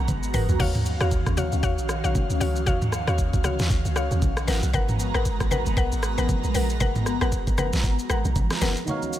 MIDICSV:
0, 0, Header, 1, 6, 480
1, 0, Start_track
1, 0, Tempo, 517241
1, 556, Time_signature, 4, 2, 24, 8
1, 8532, End_track
2, 0, Start_track
2, 0, Title_t, "Synth pluck"
2, 0, Program_c, 0, 84
2, 313, Note_on_c, 0, 70, 80
2, 316, Note_on_c, 0, 71, 75
2, 319, Note_on_c, 0, 78, 89
2, 421, Note_off_c, 0, 70, 0
2, 422, Note_off_c, 0, 71, 0
2, 424, Note_off_c, 0, 78, 0
2, 552, Note_on_c, 0, 66, 97
2, 555, Note_on_c, 0, 73, 93
2, 558, Note_on_c, 0, 77, 106
2, 660, Note_off_c, 0, 66, 0
2, 662, Note_off_c, 0, 73, 0
2, 663, Note_off_c, 0, 77, 0
2, 932, Note_on_c, 0, 66, 81
2, 934, Note_on_c, 0, 73, 72
2, 937, Note_on_c, 0, 77, 88
2, 1011, Note_off_c, 0, 66, 0
2, 1012, Note_off_c, 0, 73, 0
2, 1013, Note_off_c, 0, 77, 0
2, 1273, Note_on_c, 0, 66, 82
2, 1275, Note_on_c, 0, 73, 76
2, 1278, Note_on_c, 0, 77, 89
2, 1381, Note_off_c, 0, 66, 0
2, 1382, Note_off_c, 0, 73, 0
2, 1383, Note_off_c, 0, 77, 0
2, 1512, Note_on_c, 0, 66, 99
2, 1515, Note_on_c, 0, 73, 90
2, 1518, Note_on_c, 0, 77, 109
2, 1620, Note_off_c, 0, 66, 0
2, 1622, Note_off_c, 0, 73, 0
2, 1623, Note_off_c, 0, 77, 0
2, 1892, Note_on_c, 0, 66, 85
2, 1894, Note_on_c, 0, 73, 76
2, 1897, Note_on_c, 0, 77, 94
2, 2210, Note_off_c, 0, 66, 0
2, 2211, Note_off_c, 0, 73, 0
2, 2213, Note_off_c, 0, 77, 0
2, 2232, Note_on_c, 0, 66, 81
2, 2234, Note_on_c, 0, 73, 70
2, 2237, Note_on_c, 0, 77, 90
2, 2458, Note_off_c, 0, 66, 0
2, 2459, Note_off_c, 0, 73, 0
2, 2461, Note_off_c, 0, 77, 0
2, 2472, Note_on_c, 0, 66, 99
2, 2474, Note_on_c, 0, 73, 87
2, 2477, Note_on_c, 0, 77, 112
2, 2580, Note_off_c, 0, 66, 0
2, 2582, Note_off_c, 0, 73, 0
2, 2583, Note_off_c, 0, 77, 0
2, 2852, Note_on_c, 0, 66, 76
2, 2855, Note_on_c, 0, 73, 72
2, 2858, Note_on_c, 0, 77, 86
2, 2931, Note_off_c, 0, 66, 0
2, 2932, Note_off_c, 0, 73, 0
2, 2934, Note_off_c, 0, 77, 0
2, 3193, Note_on_c, 0, 66, 84
2, 3196, Note_on_c, 0, 73, 76
2, 3199, Note_on_c, 0, 77, 94
2, 3301, Note_off_c, 0, 66, 0
2, 3302, Note_off_c, 0, 73, 0
2, 3304, Note_off_c, 0, 77, 0
2, 3673, Note_on_c, 0, 66, 80
2, 3676, Note_on_c, 0, 73, 75
2, 3678, Note_on_c, 0, 77, 89
2, 3781, Note_off_c, 0, 66, 0
2, 3782, Note_off_c, 0, 73, 0
2, 3783, Note_off_c, 0, 77, 0
2, 4153, Note_on_c, 0, 70, 82
2, 4155, Note_on_c, 0, 71, 72
2, 4158, Note_on_c, 0, 78, 87
2, 4261, Note_off_c, 0, 70, 0
2, 4262, Note_off_c, 0, 71, 0
2, 4264, Note_off_c, 0, 78, 0
2, 4394, Note_on_c, 0, 70, 98
2, 4397, Note_on_c, 0, 71, 89
2, 4400, Note_on_c, 0, 78, 110
2, 4501, Note_off_c, 0, 70, 0
2, 4503, Note_off_c, 0, 71, 0
2, 4504, Note_off_c, 0, 78, 0
2, 4772, Note_on_c, 0, 70, 80
2, 4776, Note_on_c, 0, 71, 72
2, 4778, Note_on_c, 0, 78, 88
2, 4851, Note_off_c, 0, 70, 0
2, 4852, Note_off_c, 0, 71, 0
2, 4854, Note_off_c, 0, 78, 0
2, 5113, Note_on_c, 0, 70, 84
2, 5116, Note_on_c, 0, 71, 77
2, 5119, Note_on_c, 0, 78, 94
2, 5221, Note_off_c, 0, 70, 0
2, 5222, Note_off_c, 0, 71, 0
2, 5224, Note_off_c, 0, 78, 0
2, 5353, Note_on_c, 0, 70, 92
2, 5355, Note_on_c, 0, 71, 88
2, 5359, Note_on_c, 0, 78, 106
2, 5461, Note_off_c, 0, 70, 0
2, 5462, Note_off_c, 0, 71, 0
2, 5464, Note_off_c, 0, 78, 0
2, 5733, Note_on_c, 0, 70, 80
2, 5735, Note_on_c, 0, 71, 74
2, 5739, Note_on_c, 0, 78, 89
2, 6051, Note_off_c, 0, 70, 0
2, 6052, Note_off_c, 0, 71, 0
2, 6054, Note_off_c, 0, 78, 0
2, 6073, Note_on_c, 0, 70, 80
2, 6076, Note_on_c, 0, 71, 72
2, 6079, Note_on_c, 0, 78, 89
2, 6298, Note_off_c, 0, 70, 0
2, 6300, Note_off_c, 0, 71, 0
2, 6301, Note_off_c, 0, 78, 0
2, 6313, Note_on_c, 0, 70, 98
2, 6316, Note_on_c, 0, 71, 92
2, 6319, Note_on_c, 0, 78, 112
2, 6421, Note_off_c, 0, 70, 0
2, 6422, Note_off_c, 0, 71, 0
2, 6424, Note_off_c, 0, 78, 0
2, 6693, Note_on_c, 0, 70, 80
2, 6696, Note_on_c, 0, 71, 71
2, 6699, Note_on_c, 0, 78, 90
2, 6771, Note_off_c, 0, 70, 0
2, 6773, Note_off_c, 0, 71, 0
2, 6774, Note_off_c, 0, 78, 0
2, 7033, Note_on_c, 0, 70, 83
2, 7035, Note_on_c, 0, 71, 76
2, 7039, Note_on_c, 0, 78, 88
2, 7141, Note_off_c, 0, 70, 0
2, 7142, Note_off_c, 0, 71, 0
2, 7144, Note_off_c, 0, 78, 0
2, 7512, Note_on_c, 0, 70, 78
2, 7515, Note_on_c, 0, 71, 70
2, 7518, Note_on_c, 0, 78, 86
2, 7620, Note_off_c, 0, 70, 0
2, 7622, Note_off_c, 0, 71, 0
2, 7623, Note_off_c, 0, 78, 0
2, 7993, Note_on_c, 0, 70, 83
2, 7996, Note_on_c, 0, 71, 70
2, 7999, Note_on_c, 0, 78, 87
2, 8101, Note_off_c, 0, 70, 0
2, 8102, Note_off_c, 0, 71, 0
2, 8104, Note_off_c, 0, 78, 0
2, 8532, End_track
3, 0, Start_track
3, 0, Title_t, "Synth keys"
3, 0, Program_c, 1, 88
3, 8210, Note_on_c, 1, 51, 71
3, 8225, Note_on_c, 1, 63, 64
3, 8239, Note_on_c, 1, 66, 64
3, 8252, Note_on_c, 1, 73, 66
3, 8266, Note_on_c, 1, 77, 79
3, 8403, Control_c, 1, 64, 127
3, 8532, Note_off_c, 1, 51, 0
3, 8532, Note_off_c, 1, 63, 0
3, 8532, Note_off_c, 1, 66, 0
3, 8532, Note_off_c, 1, 73, 0
3, 8532, Note_off_c, 1, 77, 0
3, 8532, End_track
4, 0, Start_track
4, 0, Title_t, "Analog synth pad"
4, 0, Program_c, 2, 89
4, 0, Note_on_c, 2, 56, 77
4, 0, Note_on_c, 2, 59, 92
4, 0, Note_on_c, 2, 66, 81
4, 0, Note_on_c, 2, 82, 70
4, 519, Note_off_c, 2, 56, 0
4, 519, Note_off_c, 2, 59, 0
4, 519, Note_off_c, 2, 82, 0
4, 557, Note_on_c, 2, 51, 77
4, 557, Note_on_c, 2, 61, 74
4, 557, Note_on_c, 2, 77, 70
4, 4121, Note_off_c, 2, 51, 0
4, 4121, Note_off_c, 2, 61, 0
4, 4121, Note_off_c, 2, 77, 0
4, 4157, Note_on_c, 2, 56, 78
4, 4157, Note_on_c, 2, 59, 87
4, 4157, Note_on_c, 2, 82, 73
4, 8198, Note_off_c, 2, 66, 0
4, 8199, Note_off_c, 2, 56, 0
4, 8199, Note_off_c, 2, 59, 0
4, 8199, Note_off_c, 2, 82, 0
4, 8235, Note_on_c, 2, 51, 74
4, 8236, Note_on_c, 2, 61, 64
4, 8236, Note_on_c, 2, 66, 85
4, 8236, Note_on_c, 2, 77, 65
4, 8532, Note_off_c, 2, 51, 0
4, 8532, Note_off_c, 2, 61, 0
4, 8532, Note_off_c, 2, 66, 0
4, 8532, Note_off_c, 2, 77, 0
4, 8532, End_track
5, 0, Start_track
5, 0, Title_t, "Log drum bass"
5, 0, Program_c, 3, 39
5, 77, Note_on_c, 3, 32, 96
5, 303, Note_off_c, 3, 32, 0
5, 316, Note_on_c, 3, 30, 87
5, 447, Note_off_c, 3, 30, 0
5, 455, Note_on_c, 3, 34, 88
5, 550, Note_off_c, 3, 34, 0
5, 556, Note_on_c, 3, 39, 113
5, 913, Note_off_c, 3, 39, 0
5, 935, Note_on_c, 3, 39, 104
5, 1161, Note_off_c, 3, 39, 0
5, 1174, Note_on_c, 3, 39, 93
5, 1401, Note_off_c, 3, 39, 0
5, 1415, Note_on_c, 3, 37, 95
5, 1508, Note_off_c, 3, 37, 0
5, 1514, Note_on_c, 3, 39, 100
5, 1654, Note_on_c, 3, 34, 92
5, 1668, Note_off_c, 3, 39, 0
5, 1881, Note_off_c, 3, 34, 0
5, 1894, Note_on_c, 3, 34, 88
5, 1989, Note_off_c, 3, 34, 0
5, 2134, Note_on_c, 3, 37, 91
5, 2230, Note_off_c, 3, 37, 0
5, 2234, Note_on_c, 3, 37, 102
5, 2476, Note_on_c, 3, 39, 108
5, 2490, Note_off_c, 3, 37, 0
5, 2833, Note_off_c, 3, 39, 0
5, 2854, Note_on_c, 3, 39, 101
5, 3081, Note_off_c, 3, 39, 0
5, 3095, Note_on_c, 3, 37, 101
5, 3321, Note_off_c, 3, 37, 0
5, 3334, Note_on_c, 3, 39, 92
5, 3429, Note_off_c, 3, 39, 0
5, 3433, Note_on_c, 3, 37, 96
5, 3566, Note_off_c, 3, 37, 0
5, 3574, Note_on_c, 3, 37, 92
5, 3801, Note_off_c, 3, 37, 0
5, 3815, Note_on_c, 3, 39, 101
5, 3910, Note_off_c, 3, 39, 0
5, 3917, Note_on_c, 3, 34, 93
5, 4143, Note_off_c, 3, 34, 0
5, 4155, Note_on_c, 3, 32, 109
5, 4287, Note_off_c, 3, 32, 0
5, 4295, Note_on_c, 3, 35, 102
5, 4390, Note_off_c, 3, 35, 0
5, 4396, Note_on_c, 3, 32, 105
5, 4753, Note_off_c, 3, 32, 0
5, 4774, Note_on_c, 3, 32, 103
5, 5001, Note_off_c, 3, 32, 0
5, 5015, Note_on_c, 3, 32, 87
5, 5241, Note_off_c, 3, 32, 0
5, 5255, Note_on_c, 3, 30, 91
5, 5348, Note_off_c, 3, 30, 0
5, 5353, Note_on_c, 3, 34, 105
5, 5486, Note_off_c, 3, 34, 0
5, 5495, Note_on_c, 3, 32, 92
5, 5721, Note_off_c, 3, 32, 0
5, 5735, Note_on_c, 3, 32, 97
5, 5830, Note_off_c, 3, 32, 0
5, 5975, Note_on_c, 3, 34, 85
5, 6070, Note_off_c, 3, 34, 0
5, 6077, Note_on_c, 3, 34, 93
5, 6316, Note_on_c, 3, 32, 111
5, 6330, Note_off_c, 3, 34, 0
5, 6673, Note_off_c, 3, 32, 0
5, 6695, Note_on_c, 3, 32, 109
5, 6921, Note_off_c, 3, 32, 0
5, 6935, Note_on_c, 3, 30, 102
5, 7161, Note_off_c, 3, 30, 0
5, 7174, Note_on_c, 3, 34, 96
5, 7267, Note_off_c, 3, 34, 0
5, 7273, Note_on_c, 3, 32, 98
5, 7406, Note_off_c, 3, 32, 0
5, 7516, Note_on_c, 3, 32, 92
5, 7647, Note_off_c, 3, 32, 0
5, 7654, Note_on_c, 3, 34, 92
5, 7750, Note_off_c, 3, 34, 0
5, 7757, Note_on_c, 3, 32, 101
5, 7888, Note_off_c, 3, 32, 0
5, 7995, Note_on_c, 3, 30, 92
5, 8127, Note_off_c, 3, 30, 0
5, 8532, End_track
6, 0, Start_track
6, 0, Title_t, "Drums"
6, 75, Note_on_c, 9, 48, 63
6, 76, Note_on_c, 9, 63, 55
6, 76, Note_on_c, 9, 64, 81
6, 76, Note_on_c, 9, 82, 77
6, 77, Note_on_c, 9, 36, 99
6, 168, Note_off_c, 9, 48, 0
6, 169, Note_off_c, 9, 63, 0
6, 169, Note_off_c, 9, 64, 0
6, 169, Note_off_c, 9, 82, 0
6, 170, Note_off_c, 9, 36, 0
6, 214, Note_on_c, 9, 82, 52
6, 307, Note_off_c, 9, 82, 0
6, 315, Note_on_c, 9, 45, 98
6, 316, Note_on_c, 9, 46, 65
6, 316, Note_on_c, 9, 63, 83
6, 316, Note_on_c, 9, 82, 82
6, 408, Note_off_c, 9, 45, 0
6, 409, Note_off_c, 9, 46, 0
6, 409, Note_off_c, 9, 63, 0
6, 409, Note_off_c, 9, 82, 0
6, 454, Note_on_c, 9, 82, 63
6, 455, Note_on_c, 9, 43, 102
6, 547, Note_off_c, 9, 82, 0
6, 548, Note_off_c, 9, 43, 0
6, 556, Note_on_c, 9, 36, 117
6, 556, Note_on_c, 9, 49, 83
6, 558, Note_on_c, 9, 64, 88
6, 649, Note_off_c, 9, 36, 0
6, 649, Note_off_c, 9, 49, 0
6, 650, Note_off_c, 9, 64, 0
6, 695, Note_on_c, 9, 82, 51
6, 696, Note_on_c, 9, 45, 101
6, 697, Note_on_c, 9, 63, 76
6, 787, Note_off_c, 9, 82, 0
6, 789, Note_off_c, 9, 45, 0
6, 790, Note_off_c, 9, 63, 0
6, 795, Note_on_c, 9, 82, 104
6, 888, Note_off_c, 9, 82, 0
6, 933, Note_on_c, 9, 37, 97
6, 936, Note_on_c, 9, 82, 55
6, 1026, Note_off_c, 9, 37, 0
6, 1029, Note_off_c, 9, 82, 0
6, 1034, Note_on_c, 9, 82, 84
6, 1035, Note_on_c, 9, 36, 109
6, 1127, Note_off_c, 9, 82, 0
6, 1128, Note_off_c, 9, 36, 0
6, 1174, Note_on_c, 9, 36, 100
6, 1174, Note_on_c, 9, 37, 90
6, 1175, Note_on_c, 9, 82, 58
6, 1267, Note_off_c, 9, 36, 0
6, 1267, Note_off_c, 9, 37, 0
6, 1268, Note_off_c, 9, 82, 0
6, 1274, Note_on_c, 9, 82, 95
6, 1276, Note_on_c, 9, 63, 82
6, 1276, Note_on_c, 9, 64, 85
6, 1367, Note_off_c, 9, 82, 0
6, 1369, Note_off_c, 9, 63, 0
6, 1369, Note_off_c, 9, 64, 0
6, 1413, Note_on_c, 9, 82, 60
6, 1506, Note_off_c, 9, 82, 0
6, 1513, Note_on_c, 9, 36, 118
6, 1515, Note_on_c, 9, 82, 73
6, 1606, Note_off_c, 9, 36, 0
6, 1608, Note_off_c, 9, 82, 0
6, 1655, Note_on_c, 9, 82, 60
6, 1747, Note_off_c, 9, 82, 0
6, 1754, Note_on_c, 9, 37, 107
6, 1756, Note_on_c, 9, 82, 87
6, 1847, Note_off_c, 9, 37, 0
6, 1849, Note_off_c, 9, 82, 0
6, 1895, Note_on_c, 9, 82, 52
6, 1897, Note_on_c, 9, 63, 71
6, 1988, Note_off_c, 9, 82, 0
6, 1990, Note_off_c, 9, 63, 0
6, 1996, Note_on_c, 9, 63, 54
6, 1996, Note_on_c, 9, 64, 80
6, 1997, Note_on_c, 9, 36, 103
6, 1997, Note_on_c, 9, 82, 73
6, 2089, Note_off_c, 9, 63, 0
6, 2089, Note_off_c, 9, 64, 0
6, 2090, Note_off_c, 9, 36, 0
6, 2090, Note_off_c, 9, 82, 0
6, 2135, Note_on_c, 9, 82, 51
6, 2228, Note_off_c, 9, 82, 0
6, 2236, Note_on_c, 9, 63, 89
6, 2237, Note_on_c, 9, 46, 67
6, 2237, Note_on_c, 9, 82, 80
6, 2329, Note_off_c, 9, 46, 0
6, 2329, Note_off_c, 9, 63, 0
6, 2329, Note_off_c, 9, 82, 0
6, 2375, Note_on_c, 9, 82, 64
6, 2468, Note_off_c, 9, 82, 0
6, 2476, Note_on_c, 9, 36, 118
6, 2476, Note_on_c, 9, 82, 81
6, 2477, Note_on_c, 9, 64, 89
6, 2569, Note_off_c, 9, 36, 0
6, 2569, Note_off_c, 9, 82, 0
6, 2570, Note_off_c, 9, 64, 0
6, 2615, Note_on_c, 9, 82, 55
6, 2616, Note_on_c, 9, 45, 101
6, 2617, Note_on_c, 9, 63, 75
6, 2708, Note_off_c, 9, 82, 0
6, 2709, Note_off_c, 9, 45, 0
6, 2710, Note_off_c, 9, 63, 0
6, 2714, Note_on_c, 9, 37, 93
6, 2716, Note_on_c, 9, 82, 102
6, 2807, Note_off_c, 9, 37, 0
6, 2809, Note_off_c, 9, 82, 0
6, 2854, Note_on_c, 9, 37, 98
6, 2857, Note_on_c, 9, 82, 53
6, 2947, Note_off_c, 9, 37, 0
6, 2950, Note_off_c, 9, 82, 0
6, 2954, Note_on_c, 9, 82, 81
6, 2955, Note_on_c, 9, 36, 106
6, 3047, Note_off_c, 9, 82, 0
6, 3048, Note_off_c, 9, 36, 0
6, 3095, Note_on_c, 9, 36, 99
6, 3096, Note_on_c, 9, 82, 61
6, 3188, Note_off_c, 9, 36, 0
6, 3189, Note_off_c, 9, 82, 0
6, 3194, Note_on_c, 9, 37, 95
6, 3195, Note_on_c, 9, 82, 94
6, 3197, Note_on_c, 9, 63, 85
6, 3197, Note_on_c, 9, 64, 87
6, 3287, Note_off_c, 9, 37, 0
6, 3288, Note_off_c, 9, 82, 0
6, 3290, Note_off_c, 9, 63, 0
6, 3290, Note_off_c, 9, 64, 0
6, 3334, Note_on_c, 9, 82, 58
6, 3339, Note_on_c, 9, 38, 71
6, 3427, Note_off_c, 9, 82, 0
6, 3432, Note_off_c, 9, 38, 0
6, 3434, Note_on_c, 9, 36, 115
6, 3436, Note_on_c, 9, 82, 75
6, 3526, Note_off_c, 9, 36, 0
6, 3529, Note_off_c, 9, 82, 0
6, 3575, Note_on_c, 9, 82, 59
6, 3668, Note_off_c, 9, 82, 0
6, 3675, Note_on_c, 9, 37, 104
6, 3677, Note_on_c, 9, 82, 91
6, 3768, Note_off_c, 9, 37, 0
6, 3770, Note_off_c, 9, 82, 0
6, 3816, Note_on_c, 9, 82, 51
6, 3817, Note_on_c, 9, 63, 76
6, 3908, Note_off_c, 9, 82, 0
6, 3910, Note_off_c, 9, 63, 0
6, 3916, Note_on_c, 9, 63, 58
6, 3916, Note_on_c, 9, 64, 77
6, 3917, Note_on_c, 9, 36, 109
6, 3917, Note_on_c, 9, 82, 79
6, 4009, Note_off_c, 9, 63, 0
6, 4009, Note_off_c, 9, 64, 0
6, 4010, Note_off_c, 9, 36, 0
6, 4010, Note_off_c, 9, 82, 0
6, 4055, Note_on_c, 9, 37, 97
6, 4055, Note_on_c, 9, 82, 55
6, 4147, Note_off_c, 9, 37, 0
6, 4148, Note_off_c, 9, 82, 0
6, 4156, Note_on_c, 9, 63, 82
6, 4157, Note_on_c, 9, 46, 68
6, 4157, Note_on_c, 9, 82, 84
6, 4159, Note_on_c, 9, 38, 63
6, 4249, Note_off_c, 9, 63, 0
6, 4250, Note_off_c, 9, 46, 0
6, 4250, Note_off_c, 9, 82, 0
6, 4252, Note_off_c, 9, 38, 0
6, 4295, Note_on_c, 9, 82, 63
6, 4388, Note_off_c, 9, 82, 0
6, 4396, Note_on_c, 9, 36, 120
6, 4397, Note_on_c, 9, 64, 86
6, 4397, Note_on_c, 9, 82, 83
6, 4489, Note_off_c, 9, 36, 0
6, 4489, Note_off_c, 9, 82, 0
6, 4490, Note_off_c, 9, 64, 0
6, 4536, Note_on_c, 9, 63, 73
6, 4536, Note_on_c, 9, 82, 54
6, 4537, Note_on_c, 9, 45, 100
6, 4629, Note_off_c, 9, 63, 0
6, 4629, Note_off_c, 9, 82, 0
6, 4630, Note_off_c, 9, 45, 0
6, 4637, Note_on_c, 9, 82, 100
6, 4729, Note_off_c, 9, 82, 0
6, 4775, Note_on_c, 9, 37, 92
6, 4778, Note_on_c, 9, 82, 53
6, 4868, Note_off_c, 9, 37, 0
6, 4871, Note_off_c, 9, 82, 0
6, 4876, Note_on_c, 9, 36, 107
6, 4876, Note_on_c, 9, 82, 79
6, 4969, Note_off_c, 9, 36, 0
6, 4969, Note_off_c, 9, 82, 0
6, 5015, Note_on_c, 9, 36, 97
6, 5015, Note_on_c, 9, 37, 94
6, 5017, Note_on_c, 9, 82, 58
6, 5108, Note_off_c, 9, 36, 0
6, 5108, Note_off_c, 9, 37, 0
6, 5110, Note_off_c, 9, 82, 0
6, 5115, Note_on_c, 9, 63, 86
6, 5115, Note_on_c, 9, 64, 86
6, 5115, Note_on_c, 9, 82, 96
6, 5208, Note_off_c, 9, 63, 0
6, 5208, Note_off_c, 9, 64, 0
6, 5208, Note_off_c, 9, 82, 0
6, 5254, Note_on_c, 9, 82, 59
6, 5346, Note_off_c, 9, 82, 0
6, 5354, Note_on_c, 9, 36, 114
6, 5355, Note_on_c, 9, 82, 71
6, 5446, Note_off_c, 9, 36, 0
6, 5448, Note_off_c, 9, 82, 0
6, 5495, Note_on_c, 9, 82, 59
6, 5588, Note_off_c, 9, 82, 0
6, 5594, Note_on_c, 9, 37, 106
6, 5596, Note_on_c, 9, 82, 91
6, 5687, Note_off_c, 9, 37, 0
6, 5689, Note_off_c, 9, 82, 0
6, 5735, Note_on_c, 9, 82, 53
6, 5737, Note_on_c, 9, 63, 75
6, 5828, Note_off_c, 9, 82, 0
6, 5830, Note_off_c, 9, 63, 0
6, 5836, Note_on_c, 9, 63, 55
6, 5836, Note_on_c, 9, 64, 77
6, 5836, Note_on_c, 9, 82, 78
6, 5837, Note_on_c, 9, 36, 105
6, 5928, Note_off_c, 9, 63, 0
6, 5928, Note_off_c, 9, 64, 0
6, 5929, Note_off_c, 9, 82, 0
6, 5930, Note_off_c, 9, 36, 0
6, 5974, Note_on_c, 9, 82, 53
6, 6067, Note_off_c, 9, 82, 0
6, 6075, Note_on_c, 9, 63, 82
6, 6076, Note_on_c, 9, 46, 68
6, 6076, Note_on_c, 9, 82, 83
6, 6168, Note_off_c, 9, 63, 0
6, 6169, Note_off_c, 9, 46, 0
6, 6169, Note_off_c, 9, 82, 0
6, 6214, Note_on_c, 9, 82, 62
6, 6307, Note_off_c, 9, 82, 0
6, 6315, Note_on_c, 9, 82, 80
6, 6316, Note_on_c, 9, 36, 119
6, 6317, Note_on_c, 9, 64, 87
6, 6408, Note_off_c, 9, 36, 0
6, 6408, Note_off_c, 9, 82, 0
6, 6409, Note_off_c, 9, 64, 0
6, 6455, Note_on_c, 9, 63, 76
6, 6455, Note_on_c, 9, 82, 55
6, 6456, Note_on_c, 9, 45, 105
6, 6548, Note_off_c, 9, 63, 0
6, 6548, Note_off_c, 9, 82, 0
6, 6549, Note_off_c, 9, 45, 0
6, 6553, Note_on_c, 9, 37, 94
6, 6556, Note_on_c, 9, 82, 108
6, 6646, Note_off_c, 9, 37, 0
6, 6648, Note_off_c, 9, 82, 0
6, 6694, Note_on_c, 9, 37, 96
6, 6697, Note_on_c, 9, 82, 52
6, 6786, Note_off_c, 9, 37, 0
6, 6789, Note_off_c, 9, 82, 0
6, 6794, Note_on_c, 9, 82, 84
6, 6795, Note_on_c, 9, 36, 104
6, 6887, Note_off_c, 9, 82, 0
6, 6888, Note_off_c, 9, 36, 0
6, 6935, Note_on_c, 9, 36, 101
6, 6936, Note_on_c, 9, 82, 59
6, 7027, Note_off_c, 9, 36, 0
6, 7028, Note_off_c, 9, 82, 0
6, 7034, Note_on_c, 9, 37, 95
6, 7034, Note_on_c, 9, 82, 94
6, 7035, Note_on_c, 9, 63, 86
6, 7035, Note_on_c, 9, 64, 85
6, 7127, Note_off_c, 9, 37, 0
6, 7127, Note_off_c, 9, 82, 0
6, 7128, Note_off_c, 9, 63, 0
6, 7128, Note_off_c, 9, 64, 0
6, 7173, Note_on_c, 9, 82, 59
6, 7178, Note_on_c, 9, 38, 73
6, 7266, Note_off_c, 9, 82, 0
6, 7271, Note_off_c, 9, 38, 0
6, 7273, Note_on_c, 9, 36, 115
6, 7275, Note_on_c, 9, 82, 76
6, 7366, Note_off_c, 9, 36, 0
6, 7368, Note_off_c, 9, 82, 0
6, 7414, Note_on_c, 9, 82, 61
6, 7507, Note_off_c, 9, 82, 0
6, 7514, Note_on_c, 9, 37, 105
6, 7516, Note_on_c, 9, 82, 86
6, 7607, Note_off_c, 9, 37, 0
6, 7609, Note_off_c, 9, 82, 0
6, 7655, Note_on_c, 9, 82, 55
6, 7656, Note_on_c, 9, 63, 77
6, 7747, Note_off_c, 9, 82, 0
6, 7749, Note_off_c, 9, 63, 0
6, 7755, Note_on_c, 9, 63, 57
6, 7755, Note_on_c, 9, 64, 77
6, 7756, Note_on_c, 9, 82, 72
6, 7757, Note_on_c, 9, 36, 102
6, 7848, Note_off_c, 9, 63, 0
6, 7848, Note_off_c, 9, 64, 0
6, 7849, Note_off_c, 9, 36, 0
6, 7849, Note_off_c, 9, 82, 0
6, 7893, Note_on_c, 9, 37, 93
6, 7893, Note_on_c, 9, 38, 69
6, 7894, Note_on_c, 9, 82, 51
6, 7986, Note_off_c, 9, 37, 0
6, 7986, Note_off_c, 9, 38, 0
6, 7987, Note_off_c, 9, 82, 0
6, 7995, Note_on_c, 9, 46, 68
6, 7995, Note_on_c, 9, 63, 85
6, 7995, Note_on_c, 9, 82, 85
6, 7997, Note_on_c, 9, 38, 69
6, 8088, Note_off_c, 9, 46, 0
6, 8088, Note_off_c, 9, 63, 0
6, 8088, Note_off_c, 9, 82, 0
6, 8090, Note_off_c, 9, 38, 0
6, 8133, Note_on_c, 9, 82, 62
6, 8226, Note_off_c, 9, 82, 0
6, 8234, Note_on_c, 9, 82, 70
6, 8236, Note_on_c, 9, 64, 81
6, 8327, Note_off_c, 9, 82, 0
6, 8329, Note_off_c, 9, 64, 0
6, 8374, Note_on_c, 9, 82, 45
6, 8376, Note_on_c, 9, 63, 67
6, 8467, Note_off_c, 9, 82, 0
6, 8469, Note_off_c, 9, 63, 0
6, 8475, Note_on_c, 9, 82, 96
6, 8532, Note_off_c, 9, 82, 0
6, 8532, End_track
0, 0, End_of_file